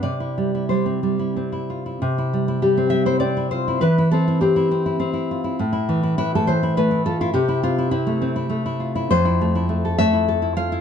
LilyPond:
\new Staff \with { instrumentName = "Nylon-string guitar" } { \time 3/4 \key c \major \tempo 4 = 102 << { d''4 c''4 r4 | r4 g'8 e''16 c''16 d''8 c''8 | b'8 a'8 g'2 | r4 e'16 a'16 c''8 b'8 a'16 f'16 |
g'8 f'8 e'2 | c''4. e''4 f''8 | } \\ { c16 e'16 g16 e'16 g16 c'16 g16 e'16 c'16 e'16 f'16 e'16 | c16 e'16 g16 e'16 g16 c'16 g16 e'16 c'16 e'16 f'16 e'16 | e16 e'16 c'16 e'16 c'16 e'16 c'16 e'16 c'16 e'16 f'16 e'16 | a,16 e'16 e16 e'16 e16 a16 e16 e'16 a16 e'16 f'16 e'16 |
c16 e'16 c'16 e'16 c'16 a16 c'16 e'16 a16 e'16 f'16 e'16 | f,16 e'16 a16 e'16 a16 a'16 a16 e'16 a'16 e'16 f'16 e'16 | } >> }